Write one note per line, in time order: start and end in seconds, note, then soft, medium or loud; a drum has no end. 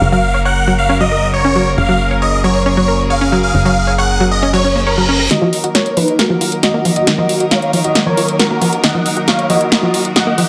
0.00 1.76 F#1 medium
0.00 5.27 C#3 medium
0.00 0.05 C#3 medium
0.00 5.27 F#3 medium
0.00 5.27 A#3 medium
0.00 1.74 F#4 medium
0.00 5.27 A#4 medium
0.12 0.22 F#3 medium
0.12 0.39 F5 medium
0.34 0.38 C#5 medium
0.45 0.55 C#5 medium
0.45 0.72 F#5 medium
0.67 0.74 F#3 loud
0.79 0.96 F5 medium
0.89 0.93 C#4 loud
1.00 1.10 F#3 loud
1.00 1.27 D#5 medium
1.12 1.18 A#4 medium
1.34 1.43 C#5 medium
1.34 1.69 C#5 medium
1.45 1.51 C#4 loud
1.56 1.62 F#3 medium
1.78 3.52 F#1 medium
1.78 1.82 C#3 medium
1.78 5.27 G#4 medium
1.78 2.13 F5 loud
1.89 1.98 F#3 loud
2.11 2.15 C#5 medium
2.22 2.31 C#5 medium
2.22 2.40 D#5 medium
2.44 2.50 F#3 loud
2.44 2.62 C#5 medium
2.66 2.70 C#4 loud
2.66 3.02 C#5 medium
2.77 2.86 F#3 medium
2.88 2.94 A#4 medium
3.10 3.20 C#5 medium
3.10 3.37 F5 medium
3.21 3.27 C#4 loud
3.32 3.38 F#3 loud
3.43 3.61 F5 medium
3.54 5.29 F#1 medium
3.54 3.58 C#3 medium
3.65 3.75 F#3 loud
3.65 3.92 F5 medium
3.87 3.91 C#5 medium
3.98 4.08 C#5 medium
3.98 4.25 F#5 medium
4.20 4.27 F#3 loud
4.31 4.49 D#5 medium
4.42 4.46 C#4 loud
4.42 reverse cymbal medium
4.53 4.63 F#3 medium
4.53 4.80 C#5 medium
4.65 4.71 C#4 medium
4.76 4.85 A#3 medium
4.87 5.22 A#4 medium
4.87 4.96 C#5 medium
4.98 5.04 F#3 medium
5.09 5.18 C#4 loud
5.20 5.23 A#4 medium
5.31 10.49 D#3 medium
5.31 5.35 D#3 medium
5.31 10.49 F#3 medium
5.31 10.49 A#3 medium
5.31 10.49 D#4 medium
5.31 5.66 F#4 medium
5.31 10.49 A#4 medium
5.31 5.66 D#5 medium
5.31 snare soft
5.31 closed hi-hat medium
5.31 riser medium
5.42 5.51 F3 loud
5.53 open hi-hat medium
5.64 5.68 F#4 medium
5.64 closed hi-hat medium
5.75 5.84 F#4 medium
5.75 5.93 A#4 medium
5.75 5.93 C#5 medium
5.75 snare soft
5.75 closed hi-hat medium
5.86 closed hi-hat soft
5.97 6.03 F3 loud
5.97 6.15 D#4 medium
5.97 6.15 B4 medium
5.97 open hi-hat loud
6.08 closed hi-hat soft
6.19 6.23 A#3 loud
6.19 6.55 F#4 medium
6.19 6.55 A#4 medium
6.19 snare soft
6.19 closed hi-hat medium
6.30 6.39 F3 loud
6.41 6.47 F4 medium
6.41 open hi-hat loud
6.52 closed hi-hat medium
6.63 6.90 F#4 medium
6.63 6.73 F#4 medium
6.63 6.90 D#5 medium
6.63 snare soft
6.63 closed hi-hat medium
6.74 6.80 A#3 loud
6.85 6.91 F3 loud
6.85 open hi-hat loud
6.96 7.14 F#4 medium
6.96 7.14 D#5 medium
6.96 closed hi-hat medium
7.07 7.11 D#3 medium
7.07 snare medium
7.07 closed hi-hat medium
7.18 7.28 F3 loud
7.18 7.45 F#4 medium
7.18 7.45 D#5 medium
7.29 open hi-hat loud
7.40 7.44 F#4 medium
7.40 closed hi-hat soft
7.51 7.61 F#4 medium
7.51 7.78 C#5 medium
7.51 7.78 F5 medium
7.51 snare soft
7.51 closed hi-hat medium
7.62 closed hi-hat soft
7.73 7.80 F3 loud
7.73 open hi-hat loud
7.84 8.02 F#4 medium
7.84 8.02 D#5 medium
7.84 closed hi-hat medium
7.95 7.99 A#3 loud
7.95 snare medium
7.95 closed hi-hat medium
8.06 8.16 F3 medium
8.06 8.33 A#4 medium
8.06 8.33 C#5 medium
8.17 8.24 F4 medium
8.17 open hi-hat loud
8.28 closed hi-hat medium
8.39 8.49 F#4 medium
8.39 8.75 F#4 medium
8.39 8.75 A#4 medium
8.39 snare medium
8.39 closed hi-hat medium
8.50 8.57 A#3 loud
8.61 8.68 F3 loud
8.61 open hi-hat loud
8.73 closed hi-hat medium
8.84 8.87 D#3 medium
8.84 9.19 D#5 medium
8.84 9.19 F#5 medium
8.84 9.19 F#5 loud
8.84 snare medium
8.84 closed hi-hat medium
8.95 9.04 F3 loud
9.06 open hi-hat loud
9.17 9.21 F#4 medium
9.17 closed hi-hat soft
9.28 9.37 F#4 medium
9.28 9.46 C#5 medium
9.28 9.46 F5 medium
9.28 snare medium
9.28 closed hi-hat medium
9.39 closed hi-hat soft
9.50 9.56 F3 loud
9.50 9.68 F#4 medium
9.50 9.68 D#5 medium
9.50 open hi-hat loud
9.61 closed hi-hat soft
9.72 9.76 A#3 loud
9.72 10.08 F#4 medium
9.72 10.07 D#5 medium
9.72 10.08 D#5 medium
9.72 snare medium
9.72 closed hi-hat medium
9.83 9.92 F3 loud
9.94 10.00 F4 medium
9.94 open hi-hat loud
10.05 closed hi-hat medium
10.16 10.25 F#4 medium
10.16 10.43 D#5 medium
10.16 10.43 F#5 medium
10.16 snare medium
10.16 closed hi-hat medium
10.27 10.33 A#3 loud
10.38 10.44 F3 loud
10.38 open hi-hat loud